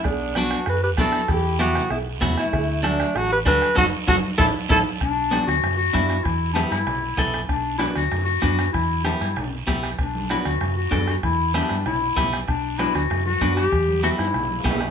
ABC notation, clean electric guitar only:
X:1
M:4/4
L:1/8
Q:1/4=193
K:Em
V:1 name="Clean electric guitar"
z2 [B,DF] z3 [B,DE] z | z2 [B,EG] z3 [B,EF] z | z2 [DFA] z3 [DFA] z | [^CFA] z [CFA] z [CEA] z [CEA] z |
z2 [B,DF] z3 [B,DE] z | z2 [B,EG] z3 [B,EA] z | z2 [B,DF] z3 [B,DF] z | z2 [B,EG] z3 [B,EG] z |
z2 [B,DF] z3 [B,DA] z | z2 [B,EG] z3 [B,EG] z | z2 [B,DF] z3 [B,DF] z | z2 [B,EG] z3 [B,EG] z |]